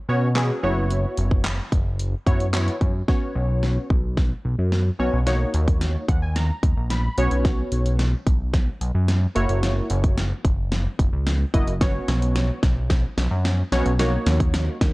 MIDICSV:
0, 0, Header, 1, 4, 480
1, 0, Start_track
1, 0, Key_signature, 5, "major"
1, 0, Tempo, 545455
1, 795, Time_signature, 4, 2, 24, 8
1, 13140, End_track
2, 0, Start_track
2, 0, Title_t, "Synth keys"
2, 0, Program_c, 0, 88
2, 75, Note_on_c, 0, 59, 80
2, 76, Note_on_c, 0, 61, 81
2, 78, Note_on_c, 0, 66, 78
2, 80, Note_on_c, 0, 73, 92
2, 247, Note_off_c, 0, 59, 0
2, 248, Note_off_c, 0, 61, 0
2, 248, Note_off_c, 0, 66, 0
2, 250, Note_off_c, 0, 73, 0
2, 315, Note_on_c, 0, 59, 72
2, 316, Note_on_c, 0, 61, 67
2, 317, Note_on_c, 0, 66, 67
2, 319, Note_on_c, 0, 68, 82
2, 543, Note_off_c, 0, 59, 0
2, 545, Note_off_c, 0, 66, 0
2, 553, Note_on_c, 0, 59, 86
2, 554, Note_on_c, 0, 64, 82
2, 555, Note_off_c, 0, 61, 0
2, 556, Note_on_c, 0, 66, 80
2, 557, Note_off_c, 0, 68, 0
2, 558, Note_on_c, 0, 73, 93
2, 1322, Note_off_c, 0, 59, 0
2, 1322, Note_off_c, 0, 64, 0
2, 1323, Note_off_c, 0, 66, 0
2, 1324, Note_off_c, 0, 73, 0
2, 1991, Note_on_c, 0, 59, 78
2, 1993, Note_on_c, 0, 64, 76
2, 1994, Note_on_c, 0, 66, 77
2, 1996, Note_on_c, 0, 73, 93
2, 2165, Note_off_c, 0, 59, 0
2, 2166, Note_off_c, 0, 64, 0
2, 2166, Note_off_c, 0, 66, 0
2, 2167, Note_off_c, 0, 73, 0
2, 2231, Note_on_c, 0, 59, 71
2, 2233, Note_on_c, 0, 64, 68
2, 2235, Note_on_c, 0, 66, 66
2, 2235, Note_on_c, 0, 73, 79
2, 2577, Note_off_c, 0, 59, 0
2, 2578, Note_off_c, 0, 64, 0
2, 2579, Note_off_c, 0, 66, 0
2, 2579, Note_off_c, 0, 73, 0
2, 2711, Note_on_c, 0, 59, 77
2, 2713, Note_on_c, 0, 61, 70
2, 2715, Note_on_c, 0, 66, 69
2, 2716, Note_on_c, 0, 73, 83
2, 3401, Note_off_c, 0, 59, 0
2, 3402, Note_off_c, 0, 61, 0
2, 3403, Note_off_c, 0, 66, 0
2, 3404, Note_off_c, 0, 73, 0
2, 4390, Note_on_c, 0, 59, 79
2, 4392, Note_on_c, 0, 61, 76
2, 4394, Note_on_c, 0, 66, 76
2, 4394, Note_on_c, 0, 73, 93
2, 4564, Note_off_c, 0, 59, 0
2, 4566, Note_off_c, 0, 61, 0
2, 4567, Note_off_c, 0, 66, 0
2, 4567, Note_off_c, 0, 73, 0
2, 4630, Note_on_c, 0, 58, 77
2, 4632, Note_on_c, 0, 63, 70
2, 4633, Note_on_c, 0, 66, 69
2, 4635, Note_on_c, 0, 73, 86
2, 5320, Note_off_c, 0, 58, 0
2, 5322, Note_off_c, 0, 63, 0
2, 5322, Note_off_c, 0, 66, 0
2, 5323, Note_off_c, 0, 73, 0
2, 5353, Note_on_c, 0, 78, 70
2, 5466, Note_off_c, 0, 78, 0
2, 5475, Note_on_c, 0, 80, 71
2, 5587, Note_off_c, 0, 80, 0
2, 5594, Note_on_c, 0, 82, 77
2, 6041, Note_off_c, 0, 82, 0
2, 6076, Note_on_c, 0, 83, 72
2, 6314, Note_on_c, 0, 59, 88
2, 6316, Note_on_c, 0, 61, 81
2, 6317, Note_on_c, 0, 66, 84
2, 6319, Note_on_c, 0, 73, 99
2, 6522, Note_off_c, 0, 83, 0
2, 7082, Note_off_c, 0, 59, 0
2, 7083, Note_off_c, 0, 61, 0
2, 7084, Note_off_c, 0, 66, 0
2, 7085, Note_off_c, 0, 73, 0
2, 8230, Note_on_c, 0, 58, 91
2, 8231, Note_on_c, 0, 64, 82
2, 8234, Note_on_c, 0, 66, 80
2, 8235, Note_on_c, 0, 73, 94
2, 9000, Note_off_c, 0, 58, 0
2, 9001, Note_off_c, 0, 64, 0
2, 9002, Note_off_c, 0, 66, 0
2, 9003, Note_off_c, 0, 73, 0
2, 10153, Note_on_c, 0, 58, 82
2, 10153, Note_on_c, 0, 64, 77
2, 10155, Note_on_c, 0, 66, 77
2, 10157, Note_on_c, 0, 75, 89
2, 10326, Note_off_c, 0, 58, 0
2, 10326, Note_off_c, 0, 64, 0
2, 10327, Note_off_c, 0, 66, 0
2, 10328, Note_off_c, 0, 75, 0
2, 10391, Note_on_c, 0, 59, 80
2, 10393, Note_on_c, 0, 61, 71
2, 10394, Note_on_c, 0, 66, 73
2, 10396, Note_on_c, 0, 73, 87
2, 11081, Note_off_c, 0, 59, 0
2, 11082, Note_off_c, 0, 61, 0
2, 11083, Note_off_c, 0, 66, 0
2, 11084, Note_off_c, 0, 73, 0
2, 12073, Note_on_c, 0, 59, 87
2, 12073, Note_on_c, 0, 61, 80
2, 12075, Note_on_c, 0, 66, 81
2, 12076, Note_on_c, 0, 73, 96
2, 12246, Note_off_c, 0, 59, 0
2, 12246, Note_off_c, 0, 61, 0
2, 12247, Note_off_c, 0, 66, 0
2, 12247, Note_off_c, 0, 73, 0
2, 12312, Note_on_c, 0, 58, 79
2, 12316, Note_on_c, 0, 63, 75
2, 12316, Note_on_c, 0, 66, 76
2, 12318, Note_on_c, 0, 73, 88
2, 13002, Note_off_c, 0, 58, 0
2, 13003, Note_off_c, 0, 63, 0
2, 13003, Note_off_c, 0, 66, 0
2, 13004, Note_off_c, 0, 73, 0
2, 13140, End_track
3, 0, Start_track
3, 0, Title_t, "Analog synth bass"
3, 0, Program_c, 1, 38
3, 76, Note_on_c, 1, 47, 88
3, 450, Note_off_c, 1, 47, 0
3, 557, Note_on_c, 1, 30, 100
3, 931, Note_off_c, 1, 30, 0
3, 1035, Note_on_c, 1, 30, 90
3, 1410, Note_off_c, 1, 30, 0
3, 1514, Note_on_c, 1, 30, 93
3, 1890, Note_off_c, 1, 30, 0
3, 1993, Note_on_c, 1, 42, 90
3, 2369, Note_off_c, 1, 42, 0
3, 2474, Note_on_c, 1, 42, 96
3, 2662, Note_off_c, 1, 42, 0
3, 2952, Note_on_c, 1, 35, 95
3, 3328, Note_off_c, 1, 35, 0
3, 3433, Note_on_c, 1, 35, 90
3, 3809, Note_off_c, 1, 35, 0
3, 3914, Note_on_c, 1, 35, 85
3, 4008, Note_off_c, 1, 35, 0
3, 4034, Note_on_c, 1, 42, 90
3, 4316, Note_off_c, 1, 42, 0
3, 4393, Note_on_c, 1, 35, 86
3, 4488, Note_off_c, 1, 35, 0
3, 4515, Note_on_c, 1, 35, 80
3, 4796, Note_off_c, 1, 35, 0
3, 4876, Note_on_c, 1, 39, 98
3, 5251, Note_off_c, 1, 39, 0
3, 5355, Note_on_c, 1, 39, 94
3, 5730, Note_off_c, 1, 39, 0
3, 5833, Note_on_c, 1, 39, 90
3, 5928, Note_off_c, 1, 39, 0
3, 5954, Note_on_c, 1, 34, 90
3, 6236, Note_off_c, 1, 34, 0
3, 6315, Note_on_c, 1, 35, 91
3, 6409, Note_off_c, 1, 35, 0
3, 6435, Note_on_c, 1, 35, 86
3, 6716, Note_off_c, 1, 35, 0
3, 6794, Note_on_c, 1, 35, 98
3, 7169, Note_off_c, 1, 35, 0
3, 7274, Note_on_c, 1, 35, 90
3, 7649, Note_off_c, 1, 35, 0
3, 7753, Note_on_c, 1, 35, 91
3, 7848, Note_off_c, 1, 35, 0
3, 7873, Note_on_c, 1, 42, 91
3, 8155, Note_off_c, 1, 42, 0
3, 8234, Note_on_c, 1, 30, 91
3, 8328, Note_off_c, 1, 30, 0
3, 8352, Note_on_c, 1, 30, 87
3, 8635, Note_off_c, 1, 30, 0
3, 8714, Note_on_c, 1, 30, 102
3, 9089, Note_off_c, 1, 30, 0
3, 9194, Note_on_c, 1, 30, 93
3, 9570, Note_off_c, 1, 30, 0
3, 9673, Note_on_c, 1, 30, 95
3, 9767, Note_off_c, 1, 30, 0
3, 9792, Note_on_c, 1, 37, 86
3, 10075, Note_off_c, 1, 37, 0
3, 10155, Note_on_c, 1, 30, 88
3, 10249, Note_off_c, 1, 30, 0
3, 10272, Note_on_c, 1, 30, 83
3, 10554, Note_off_c, 1, 30, 0
3, 10632, Note_on_c, 1, 35, 96
3, 11008, Note_off_c, 1, 35, 0
3, 11113, Note_on_c, 1, 35, 93
3, 11489, Note_off_c, 1, 35, 0
3, 11593, Note_on_c, 1, 35, 93
3, 11687, Note_off_c, 1, 35, 0
3, 11711, Note_on_c, 1, 42, 86
3, 11994, Note_off_c, 1, 42, 0
3, 12073, Note_on_c, 1, 35, 90
3, 12167, Note_off_c, 1, 35, 0
3, 12193, Note_on_c, 1, 35, 87
3, 12475, Note_off_c, 1, 35, 0
3, 12553, Note_on_c, 1, 39, 102
3, 12929, Note_off_c, 1, 39, 0
3, 13035, Note_on_c, 1, 39, 97
3, 13140, Note_off_c, 1, 39, 0
3, 13140, End_track
4, 0, Start_track
4, 0, Title_t, "Drums"
4, 311, Note_on_c, 9, 38, 82
4, 317, Note_on_c, 9, 39, 111
4, 399, Note_off_c, 9, 38, 0
4, 405, Note_off_c, 9, 39, 0
4, 795, Note_on_c, 9, 42, 85
4, 883, Note_off_c, 9, 42, 0
4, 1033, Note_on_c, 9, 42, 71
4, 1121, Note_off_c, 9, 42, 0
4, 1155, Note_on_c, 9, 36, 88
4, 1243, Note_off_c, 9, 36, 0
4, 1268, Note_on_c, 9, 38, 83
4, 1273, Note_on_c, 9, 42, 95
4, 1274, Note_on_c, 9, 39, 109
4, 1356, Note_off_c, 9, 38, 0
4, 1361, Note_off_c, 9, 42, 0
4, 1362, Note_off_c, 9, 39, 0
4, 1515, Note_on_c, 9, 36, 97
4, 1516, Note_on_c, 9, 42, 66
4, 1603, Note_off_c, 9, 36, 0
4, 1604, Note_off_c, 9, 42, 0
4, 1754, Note_on_c, 9, 42, 84
4, 1842, Note_off_c, 9, 42, 0
4, 1993, Note_on_c, 9, 36, 94
4, 1996, Note_on_c, 9, 42, 66
4, 2081, Note_off_c, 9, 36, 0
4, 2084, Note_off_c, 9, 42, 0
4, 2114, Note_on_c, 9, 42, 53
4, 2202, Note_off_c, 9, 42, 0
4, 2230, Note_on_c, 9, 38, 85
4, 2234, Note_on_c, 9, 42, 90
4, 2236, Note_on_c, 9, 39, 106
4, 2318, Note_off_c, 9, 38, 0
4, 2322, Note_off_c, 9, 42, 0
4, 2324, Note_off_c, 9, 39, 0
4, 2357, Note_on_c, 9, 42, 47
4, 2445, Note_off_c, 9, 42, 0
4, 2473, Note_on_c, 9, 42, 65
4, 2474, Note_on_c, 9, 36, 95
4, 2561, Note_off_c, 9, 42, 0
4, 2562, Note_off_c, 9, 36, 0
4, 2714, Note_on_c, 9, 36, 109
4, 2714, Note_on_c, 9, 38, 52
4, 2802, Note_off_c, 9, 36, 0
4, 2802, Note_off_c, 9, 38, 0
4, 3194, Note_on_c, 9, 38, 53
4, 3282, Note_off_c, 9, 38, 0
4, 3434, Note_on_c, 9, 36, 98
4, 3522, Note_off_c, 9, 36, 0
4, 3673, Note_on_c, 9, 36, 86
4, 3674, Note_on_c, 9, 38, 57
4, 3761, Note_off_c, 9, 36, 0
4, 3762, Note_off_c, 9, 38, 0
4, 4154, Note_on_c, 9, 38, 57
4, 4242, Note_off_c, 9, 38, 0
4, 4635, Note_on_c, 9, 38, 57
4, 4635, Note_on_c, 9, 42, 85
4, 4723, Note_off_c, 9, 38, 0
4, 4723, Note_off_c, 9, 42, 0
4, 4873, Note_on_c, 9, 42, 69
4, 4961, Note_off_c, 9, 42, 0
4, 4995, Note_on_c, 9, 36, 92
4, 4996, Note_on_c, 9, 42, 51
4, 5083, Note_off_c, 9, 36, 0
4, 5084, Note_off_c, 9, 42, 0
4, 5114, Note_on_c, 9, 38, 63
4, 5114, Note_on_c, 9, 42, 101
4, 5202, Note_off_c, 9, 38, 0
4, 5202, Note_off_c, 9, 42, 0
4, 5355, Note_on_c, 9, 36, 98
4, 5357, Note_on_c, 9, 42, 62
4, 5443, Note_off_c, 9, 36, 0
4, 5445, Note_off_c, 9, 42, 0
4, 5595, Note_on_c, 9, 42, 84
4, 5596, Note_on_c, 9, 38, 62
4, 5683, Note_off_c, 9, 42, 0
4, 5684, Note_off_c, 9, 38, 0
4, 5834, Note_on_c, 9, 36, 94
4, 5835, Note_on_c, 9, 42, 65
4, 5922, Note_off_c, 9, 36, 0
4, 5923, Note_off_c, 9, 42, 0
4, 6075, Note_on_c, 9, 38, 64
4, 6075, Note_on_c, 9, 42, 88
4, 6163, Note_off_c, 9, 38, 0
4, 6163, Note_off_c, 9, 42, 0
4, 6315, Note_on_c, 9, 42, 69
4, 6403, Note_off_c, 9, 42, 0
4, 6434, Note_on_c, 9, 42, 46
4, 6522, Note_off_c, 9, 42, 0
4, 6555, Note_on_c, 9, 36, 115
4, 6555, Note_on_c, 9, 38, 66
4, 6555, Note_on_c, 9, 42, 85
4, 6643, Note_off_c, 9, 36, 0
4, 6643, Note_off_c, 9, 38, 0
4, 6643, Note_off_c, 9, 42, 0
4, 6793, Note_on_c, 9, 42, 71
4, 6881, Note_off_c, 9, 42, 0
4, 6916, Note_on_c, 9, 42, 51
4, 7004, Note_off_c, 9, 42, 0
4, 7033, Note_on_c, 9, 38, 71
4, 7033, Note_on_c, 9, 42, 102
4, 7121, Note_off_c, 9, 38, 0
4, 7121, Note_off_c, 9, 42, 0
4, 7274, Note_on_c, 9, 36, 97
4, 7274, Note_on_c, 9, 42, 66
4, 7362, Note_off_c, 9, 36, 0
4, 7362, Note_off_c, 9, 42, 0
4, 7512, Note_on_c, 9, 36, 93
4, 7513, Note_on_c, 9, 42, 86
4, 7514, Note_on_c, 9, 38, 74
4, 7600, Note_off_c, 9, 36, 0
4, 7601, Note_off_c, 9, 42, 0
4, 7602, Note_off_c, 9, 38, 0
4, 7755, Note_on_c, 9, 42, 64
4, 7843, Note_off_c, 9, 42, 0
4, 7994, Note_on_c, 9, 38, 72
4, 7994, Note_on_c, 9, 42, 95
4, 8082, Note_off_c, 9, 38, 0
4, 8082, Note_off_c, 9, 42, 0
4, 8234, Note_on_c, 9, 42, 66
4, 8322, Note_off_c, 9, 42, 0
4, 8352, Note_on_c, 9, 42, 46
4, 8440, Note_off_c, 9, 42, 0
4, 8475, Note_on_c, 9, 38, 79
4, 8475, Note_on_c, 9, 42, 91
4, 8563, Note_off_c, 9, 38, 0
4, 8563, Note_off_c, 9, 42, 0
4, 8710, Note_on_c, 9, 42, 73
4, 8798, Note_off_c, 9, 42, 0
4, 8833, Note_on_c, 9, 42, 51
4, 8834, Note_on_c, 9, 36, 93
4, 8921, Note_off_c, 9, 42, 0
4, 8922, Note_off_c, 9, 36, 0
4, 8955, Note_on_c, 9, 38, 77
4, 8955, Note_on_c, 9, 42, 96
4, 9043, Note_off_c, 9, 38, 0
4, 9043, Note_off_c, 9, 42, 0
4, 9194, Note_on_c, 9, 36, 97
4, 9196, Note_on_c, 9, 42, 68
4, 9282, Note_off_c, 9, 36, 0
4, 9284, Note_off_c, 9, 42, 0
4, 9434, Note_on_c, 9, 42, 86
4, 9435, Note_on_c, 9, 38, 79
4, 9522, Note_off_c, 9, 42, 0
4, 9523, Note_off_c, 9, 38, 0
4, 9673, Note_on_c, 9, 36, 94
4, 9676, Note_on_c, 9, 42, 63
4, 9761, Note_off_c, 9, 36, 0
4, 9764, Note_off_c, 9, 42, 0
4, 9915, Note_on_c, 9, 38, 80
4, 9915, Note_on_c, 9, 42, 91
4, 10003, Note_off_c, 9, 38, 0
4, 10003, Note_off_c, 9, 42, 0
4, 10154, Note_on_c, 9, 36, 98
4, 10156, Note_on_c, 9, 42, 69
4, 10242, Note_off_c, 9, 36, 0
4, 10244, Note_off_c, 9, 42, 0
4, 10274, Note_on_c, 9, 42, 49
4, 10362, Note_off_c, 9, 42, 0
4, 10394, Note_on_c, 9, 36, 118
4, 10394, Note_on_c, 9, 38, 85
4, 10394, Note_on_c, 9, 42, 90
4, 10482, Note_off_c, 9, 36, 0
4, 10482, Note_off_c, 9, 38, 0
4, 10482, Note_off_c, 9, 42, 0
4, 10632, Note_on_c, 9, 42, 70
4, 10634, Note_on_c, 9, 38, 87
4, 10720, Note_off_c, 9, 42, 0
4, 10722, Note_off_c, 9, 38, 0
4, 10756, Note_on_c, 9, 42, 54
4, 10844, Note_off_c, 9, 42, 0
4, 10873, Note_on_c, 9, 42, 101
4, 10874, Note_on_c, 9, 38, 87
4, 10961, Note_off_c, 9, 42, 0
4, 10962, Note_off_c, 9, 38, 0
4, 11114, Note_on_c, 9, 36, 95
4, 11114, Note_on_c, 9, 38, 89
4, 11115, Note_on_c, 9, 42, 64
4, 11202, Note_off_c, 9, 36, 0
4, 11202, Note_off_c, 9, 38, 0
4, 11203, Note_off_c, 9, 42, 0
4, 11352, Note_on_c, 9, 36, 90
4, 11354, Note_on_c, 9, 38, 89
4, 11354, Note_on_c, 9, 42, 86
4, 11440, Note_off_c, 9, 36, 0
4, 11442, Note_off_c, 9, 38, 0
4, 11442, Note_off_c, 9, 42, 0
4, 11596, Note_on_c, 9, 38, 89
4, 11597, Note_on_c, 9, 42, 65
4, 11684, Note_off_c, 9, 38, 0
4, 11685, Note_off_c, 9, 42, 0
4, 11836, Note_on_c, 9, 38, 84
4, 11836, Note_on_c, 9, 42, 91
4, 11924, Note_off_c, 9, 38, 0
4, 11924, Note_off_c, 9, 42, 0
4, 12075, Note_on_c, 9, 38, 90
4, 12075, Note_on_c, 9, 42, 66
4, 12163, Note_off_c, 9, 38, 0
4, 12163, Note_off_c, 9, 42, 0
4, 12193, Note_on_c, 9, 42, 49
4, 12281, Note_off_c, 9, 42, 0
4, 12314, Note_on_c, 9, 38, 92
4, 12314, Note_on_c, 9, 42, 89
4, 12402, Note_off_c, 9, 38, 0
4, 12402, Note_off_c, 9, 42, 0
4, 12553, Note_on_c, 9, 42, 74
4, 12555, Note_on_c, 9, 38, 98
4, 12641, Note_off_c, 9, 42, 0
4, 12643, Note_off_c, 9, 38, 0
4, 12675, Note_on_c, 9, 36, 91
4, 12675, Note_on_c, 9, 42, 54
4, 12763, Note_off_c, 9, 36, 0
4, 12763, Note_off_c, 9, 42, 0
4, 12795, Note_on_c, 9, 38, 94
4, 12795, Note_on_c, 9, 42, 101
4, 12883, Note_off_c, 9, 38, 0
4, 12883, Note_off_c, 9, 42, 0
4, 13035, Note_on_c, 9, 36, 106
4, 13035, Note_on_c, 9, 38, 95
4, 13037, Note_on_c, 9, 42, 70
4, 13123, Note_off_c, 9, 36, 0
4, 13123, Note_off_c, 9, 38, 0
4, 13125, Note_off_c, 9, 42, 0
4, 13140, End_track
0, 0, End_of_file